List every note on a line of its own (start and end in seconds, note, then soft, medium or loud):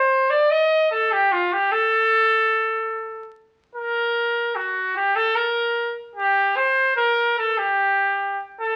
0.00 0.32 C5 medium
0.30 0.52 D5 medium
0.51 0.91 D#5 loud
0.91 1.14 A4 medium
1.12 1.34 G4 medium
1.32 1.54 F4 medium
1.53 1.73 G4 medium
1.72 3.34 A4 loud
3.75 4.57 A#4 medium
4.56 4.96 F#4 medium
4.96 5.17 G4 medium
5.16 5.37 A4 loud
5.35 5.97 A#4 medium
6.16 6.58 G4 medium
6.56 6.96 C5 medium
6.97 7.36 A#4 medium
7.38 7.59 A4 medium
7.58 8.41 G4 medium
8.61 8.76 A4 loud